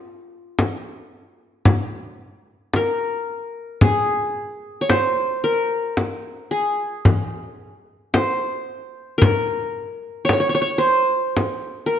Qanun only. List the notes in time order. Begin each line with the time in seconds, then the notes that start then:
Already playing: F4
2.76 A#4
3.82 G#4
4.81 C#5
4.89 C5
5.44 A#4
6.51 G#4
8.14 C5
9.18 A#4
10.25 C#5
10.33 C#5
10.40 C#5
10.49 C#5
10.55 C#5
10.62 C#5
10.78 C5
11.86 A#4